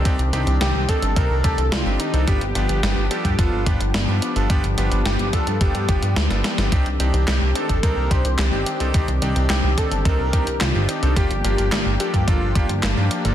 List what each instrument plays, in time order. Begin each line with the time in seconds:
Already playing: analog synth pad D#3 C4 D4 G4
0.05 analog synth bass C2, electric grand piano C4 D4 D#4 G4, kick, closed hi-hat
0.19 analog synth bass C2, closed hi-hat
0.33 analog synth bass C2, electric grand piano C4 D4 D#4 G4, closed hi-hat
0.47 analog synth bass C2, closed hi-hat
0.61 analog synth bass C2, electric grand piano C4 D4 D#4 G4, analog synth lead G4, snare, closed hi-hat
0.74 analog synth bass C2
0.89 electric grand piano C4 D4 D#4 A4, analog synth lead A4, kick, closed hi-hat
1.02 analog synth bass G1, closed hi-hat
1.16 analog synth bass C2, electric grand piano C4 D4 D#4 A4, analog synth lead A#4, kick, closed hi-hat
1.30 analog synth bass C2
1.44 analog synth bass C2, electric grand piano C4 D4 D#4 G4, analog synth lead A4, kick, closed hi-hat
1.58 analog synth bass C2, closed hi-hat
1.72 analog synth bass C2, analog synth lead F4, snare, closed hi-hat
1.86 analog synth bass G1, electric grand piano C4 D4 D#4 G4
2.00 analog synth lead D#4, closed hi-hat
2.14 analog synth bass C2, electric grand piano C4 D4 D#4 A4, closed hi-hat
2.27 analog synth bass G1, analog synth pad F3 B3 D4 G4, electric grand piano B3 D4 F4 G4, analog synth lead G4, kick, closed hi-hat
2.41 analog synth bass G1, closed hi-hat
2.55 analog synth bass G1, electric grand piano B3 D4 F4 G4, closed hi-hat
2.69 analog synth bass G1, closed hi-hat
2.83 analog synth bass G1, electric grand piano B3 D4 F4 G4, snare, closed hi-hat
2.97 analog synth bass G1
3.11 electric grand piano B3 D4 F4 A4, analog synth lead G4, closed hi-hat
3.25 analog synth bass G2, kick, closed hi-hat
3.39 analog synth bass G1, electric grand piano B3 D4 F4 A4, analog synth lead F4, kick, closed hi-hat
3.53 analog synth bass G1
3.66 analog synth bass G1, electric grand piano B3 D4 F4 G4, kick, closed hi-hat
3.81 analog synth bass G1, closed hi-hat
3.94 analog synth bass G1, snare, closed hi-hat
4.08 analog synth bass G2, electric grand piano B3 D4 F4 G4
4.22 closed hi-hat
4.36 analog synth bass G1, electric grand piano B3 D4 F4 A4, closed hi-hat
4.50 analog synth bass G1, electric grand piano B3 D4 F4 G4, kick, closed hi-hat
4.64 analog synth bass G1, closed hi-hat
4.78 analog synth bass G1, electric grand piano B3 D4 F4 G4, closed hi-hat
4.91 analog synth bass G1, closed hi-hat
5.05 analog synth bass G1, electric grand piano B3 D4 F4 G4, analog synth lead G4, snare, closed hi-hat
5.19 analog synth bass G1, closed hi-hat
5.33 electric grand piano B3 D4 F4 A4, analog synth lead A4, kick, closed hi-hat
5.47 analog synth bass G2, closed hi-hat
5.61 analog synth bass G1, electric grand piano B3 D4 F4 A4, analog synth lead G4, kick, closed hi-hat
5.75 analog synth bass G2, closed hi-hat
5.89 analog synth bass G1, electric grand piano B3 D4 F4 G4, kick, closed hi-hat
6.02 analog synth bass G2, closed hi-hat
6.16 analog synth bass D2, snare, closed hi-hat
6.30 analog synth bass G1, electric grand piano B3 D4 F4 A4, snare, closed hi-hat
6.44 snare, closed hi-hat
6.58 analog synth bass G1, electric grand piano B3 D4 F4 A4, snare, closed hi-hat
6.72 analog synth bass C2, analog synth pad D#3 C4 D4, electric grand piano C4 D4 D#4 G4, kick, closed hi-hat
6.86 analog synth bass C2, closed hi-hat
7.00 analog synth bass C2, electric grand piano C4 D4 D#4 G4, closed hi-hat
7.14 analog synth bass C2, closed hi-hat
7.28 analog synth bass C2, electric grand piano C4 D4 D#4 G4, analog synth lead G4, snare, clap, closed hi-hat
7.41 analog synth bass C2
7.55 electric grand piano C4 D4 D#4 A4, analog synth lead A4, closed hi-hat
7.69 analog synth bass G1, kick, closed hi-hat
7.83 analog synth bass C2, electric grand piano C4 D4 D#4 A4, analog synth lead A#4, kick, closed hi-hat
7.97 analog synth bass C2
8.11 analog synth bass C2, electric grand piano C4 D4 D#4 G4, analog synth lead C5, kick, closed hi-hat
8.25 analog synth bass C2, closed hi-hat
8.39 analog synth bass C2, analog synth lead G4, snare, clap, closed hi-hat
8.53 analog synth bass G1, electric grand piano C4 D4 D#4 G4
8.66 closed hi-hat
8.80 analog synth bass C2, electric grand piano C4 D4 D#4 A4, closed hi-hat
8.94 analog synth bass C2, electric grand piano C4 D4 D#4 G4, kick, closed hi-hat
9.08 analog synth bass C2, closed hi-hat
9.22 analog synth bass C2, electric grand piano C4 D4 D#4 G4, closed hi-hat
9.36 analog synth bass C2, closed hi-hat
9.50 analog synth bass C2, electric grand piano C4 D4 D#4 G4, analog synth lead G4, snare, clap, closed hi-hat
9.64 analog synth bass C2
9.78 electric grand piano C4 D4 D#4 A4, analog synth lead A4, kick, closed hi-hat
9.91 analog synth bass G1, closed hi-hat
10.05 analog synth bass C2, electric grand piano C4 D4 D#4 A4, analog synth lead A#4, kick, closed hi-hat
10.20 analog synth bass C2
10.33 analog synth bass C2, electric grand piano C4 D4 D#4 G4, kick, closed hi-hat
10.47 analog synth bass C2, closed hi-hat
10.61 analog synth bass C2, analog synth lead F4, snare, clap, closed hi-hat
10.75 analog synth bass G1, electric grand piano C4 D4 D#4 G4
10.89 analog synth lead D#4, closed hi-hat
11.03 analog synth bass C2, electric grand piano C4 D4 D#4 A4, closed hi-hat
11.16 analog synth bass G1, analog synth pad F3 A#3, electric grand piano A#3 D4 F4 G4, analog synth lead G4, kick, closed hi-hat
11.31 analog synth bass G1, closed hi-hat
11.44 analog synth bass G1, electric grand piano A#3 D4 F4 G4, closed hi-hat
11.58 analog synth bass G1, closed hi-hat
11.72 analog synth bass G1, electric grand piano A#3 D4 F4 G4, snare, clap, closed hi-hat
11.86 analog synth bass G1
12.00 electric grand piano A#3 D4 F4 A4, analog synth lead G4, closed hi-hat
12.14 analog synth bass G2, kick, closed hi-hat
12.28 analog synth bass G1, electric grand piano A#3 D4 F4 A4, analog synth lead F4, kick, closed hi-hat
12.41 analog synth bass G1
12.55 analog synth bass G1, electric grand piano A#3 D4 F4 G4, kick, closed hi-hat
12.69 analog synth bass G1, closed hi-hat
12.83 analog synth bass G1, snare, clap, closed hi-hat
12.97 analog synth bass G2, electric grand piano A#3 D4 F4 G4
13.11 closed hi-hat
13.25 analog synth bass G1, electric grand piano A#3 D4 F4 A4, closed hi-hat